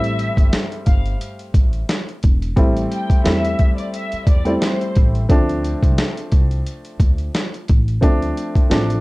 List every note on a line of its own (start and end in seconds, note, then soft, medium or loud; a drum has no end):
0.00 0.27 A1 medium
0.00 2.19 G3 medium
0.00 2.19 A3 medium
0.00 2.20 C4 medium
0.00 2.20 E4 loud
0.00 0.48 E5 loud
0.00 closed hi-hat medium
0.19 closed hi-hat medium
0.37 0.50 G1 medium
0.37 kick medium
0.37 closed hi-hat medium
0.53 snare loud
0.53 closed hi-hat medium
0.72 closed hi-hat medium
0.86 1.14 G1 medium
0.86 1.03 F5 medium
0.86 kick medium
0.86 closed hi-hat medium
1.06 closed hi-hat medium
1.21 closed hi-hat loud
1.39 closed hi-hat medium
1.54 1.82 A1 medium
1.54 kick loud
1.54 closed hi-hat medium
1.73 closed hi-hat medium
1.89 snare loud
1.89 closed hi-hat medium
2.09 closed hi-hat soft
2.23 2.51 E1 medium
2.23 kick medium
2.23 closed hi-hat medium
2.42 closed hi-hat soft
2.56 2.84 A1 loud
2.56 3.20 G3 medium
2.56 3.20 A3 medium
2.56 3.21 C4 medium
2.56 3.21 E4 medium
2.56 kick loud
2.56 closed hi-hat medium
2.77 closed hi-hat medium
2.92 3.22 G5 medium
2.92 closed hi-hat medium
3.10 kick medium
3.10 closed hi-hat medium
3.24 3.53 E2 medium
3.24 4.35 G3 medium
3.24 4.35 A3 medium
3.24 4.36 C4 medium
3.24 4.36 E4 loud
3.24 3.75 E5 loud
3.24 snare loud
3.24 closed hi-hat medium
3.45 closed hi-hat medium
3.59 kick medium
3.59 closed hi-hat medium
3.77 3.91 D5 medium
3.77 closed hi-hat medium
3.94 4.25 E5 medium
3.94 closed hi-hat loud
4.12 muted upright bass stroke soft
4.12 closed hi-hat medium
4.27 4.55 E2 medium
4.27 4.58 D5 medium
4.27 kick loud
4.27 closed hi-hat medium
4.45 5.23 G3 medium
4.45 5.23 A3 medium
4.45 5.24 C4 medium
4.45 5.24 E4 loud
4.45 closed hi-hat medium
4.61 4.92 C5 medium
4.61 snare loud
4.61 closed hi-hat medium
4.81 closed hi-hat soft
4.95 5.24 A1 medium
4.95 kick loud
4.95 closed hi-hat medium
5.15 closed hi-hat medium
5.29 5.73 D2 loud
5.29 7.65 F3 medium
5.29 7.65 A3 medium
5.29 7.66 C4 medium
5.29 7.66 D4 loud
5.29 kick loud
5.29 closed hi-hat medium
5.49 closed hi-hat medium
5.64 closed hi-hat medium
5.83 5.95 C2 medium
5.83 kick medium
5.83 closed hi-hat medium
5.98 snare loud
5.98 closed hi-hat medium
6.17 closed hi-hat medium
6.32 6.60 C2 medium
6.32 kick medium
6.32 closed hi-hat medium
6.51 closed hi-hat medium
6.67 closed hi-hat loud
6.85 closed hi-hat medium
7.00 7.28 D2 medium
7.00 kick loud
7.00 closed hi-hat medium
7.18 closed hi-hat medium
7.34 snare loud
7.34 closed hi-hat medium
7.54 closed hi-hat soft
7.68 7.97 A1 medium
7.68 kick medium
7.68 closed hi-hat medium
7.88 closed hi-hat medium
8.01 8.30 D2 loud
8.01 8.65 F3 medium
8.01 8.65 A3 medium
8.01 8.66 C4 medium
8.01 8.66 D4 loud
8.01 kick loud
8.01 closed hi-hat medium
8.22 closed hi-hat medium
8.37 closed hi-hat medium
8.55 kick medium
8.55 closed hi-hat medium
8.70 8.98 A1 loud
8.70 9.01 F3 medium
8.70 9.01 A3 medium
8.70 9.01 C4 medium
8.70 9.01 D4 loud
8.70 snare loud
8.70 closed hi-hat medium
8.90 closed hi-hat medium